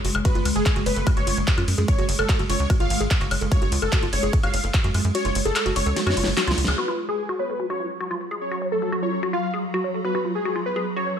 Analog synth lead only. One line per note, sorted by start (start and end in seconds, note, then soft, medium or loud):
0.25 0.45 B4 loud
0.56 0.75 G#4 loud
0.86 1.06 B4 loud
1.17 1.37 C#5 loud
1.88 2.08 C#5 loud
2.19 2.39 A4 loud
2.50 2.69 C#5 loud
2.80 3.00 F5 loud
3.52 3.71 C#5 loud
3.82 4.02 A4 loud
4.13 4.33 C#5 loud
4.43 4.63 F5 loud
5.15 5.35 C#5 loud
5.46 5.65 A4 loud
5.76 5.96 C#5 loud
6.07 6.26 C#5 loud
6.78 6.98 B4 loud
7.09 7.28 G#4 loud
7.39 7.59 B4 medium
7.70 7.90 C#5 medium
8.41 8.61 C#5 loud
8.72 8.92 A4 loud
9.03 9.22 C#5 loud
9.33 9.53 F5 medium
10.05 10.24 B4 loud
10.35 10.55 G#4 loud
10.66 10.86 B4 loud
10.97 11.16 C#5 medium